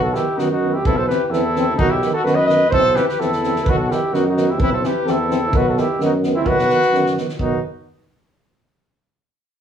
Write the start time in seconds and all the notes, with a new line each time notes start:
Already playing: B1
0.03 F#4 A4
0.13 D#3 B3 E4 G4, snare
0.37 F#2 D#3 B3 D#4 F#4, snare
0.50 D#4 F#4
0.62 D#3 B3
0.72 E4 G4
0.84 B1 E3 C4 E4 A4, kick
0.97 A4 C5
1.07 E3 C4 G4 B4, snare
1.26 E2 G4 B4
1.30 E3 C4 E4 A4, snare
1.56 E3 C4, snare
1.77 B1 D#3 B3 D#4 F#4, kick
1.90 E4 G4
2.01 D#3 B3, snare
2.13 F#4 A4
2.24 F#2 D#3 B3 F#4 B4, snare
2.35 B4 D#5
2.47 D#3 B3 B4 D#5, snare
2.70 B1 E3 C4 A4 C5, kick
2.94 E3 C4 G4 B4, snare
3.08 G4 B4, snare
3.19 E2 E3 C4 E4 A4, snare
3.32 snare
3.42 E3 C4, snare
3.56 snare
3.65 B1 D#3 B3 B4, kick
3.69 F#4
3.76 F#4 A4
3.89 D#3 B3 E4 G4, snare
4.12 F#2 D#3 B3 D#4 F#4, snare
4.27 D#4 F#4
4.35 D#3 B3, snare
4.50 E4 G4
4.59 B1 E3 C4 E4 B4, kick
4.72 A4 C5
4.82 E3 C4 B4, snare
4.86 G4
5.05 E2 E3 C4 A4, snare
5.11 E4
5.28 E3 C4, snare
5.52 B1 D#3 B3 B4, kick
5.57 F#4
5.68 F#4 A4
5.76 D#3 B3 E4 G4, snare
5.98 F#2 D#3 B3, snare
6.04 D#4 F#4
6.23 D#3 B3, snare
6.35 C4 E4
6.45 B1 D#3 B3 F#4 B4, kick
6.59 snare
6.69 D#3 B3, snare
6.82 snare
6.92 F#2 D#3 B3, snare
7.06 snare
7.15 D#3 B3, snare
7.29 snare
7.39 B1 D#3 B3 D#4 F#4, kick